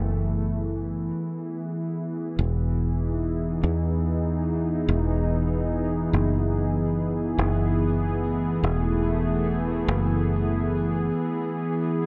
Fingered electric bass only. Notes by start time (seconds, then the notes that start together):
Already playing: F#1
2.39 E1
3.64 E2
4.89 E1
6.13 F#1
7.39 F#1
8.64 E1
9.88 F#1